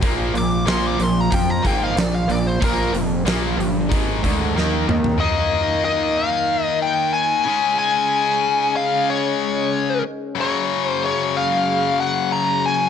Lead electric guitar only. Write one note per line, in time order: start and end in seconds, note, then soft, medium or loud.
0.38 0.68 D6 loud
0.69 0.84 C6 loud
0.88 1.01 D6 loud
1.03 1.21 C6 loud
1.21 1.34 A#5 medium
1.34 1.50 G5 medium
1.50 1.65 A#5 loud
1.67 1.82 G5 loud
1.83 1.98 F5 loud
1.98 2.13 D5 loud
2.15 2.30 F5 loud
2.31 2.47 D5 medium
2.47 2.62 C5 medium
2.64 2.94 A#4 loud
5.20 5.83 D#5 medium
5.85 6.18 D#5 medium
6.18 6.64 F5 loud
6.64 6.78 D#5 loud
6.83 7.12 G5 loud
7.14 7.78 G#5 loud
7.79 8.76 G#5 loud
8.76 9.09 F5 loud
9.10 10.01 C#5 medium
10.41 10.86 C#5 medium
10.86 11.04 C5 medium
11.05 11.36 C#5 medium
11.37 12.00 F5 loud
12.01 12.32 F#5 loud
12.32 12.64 A#5 loud
12.66 12.89 G#5 loud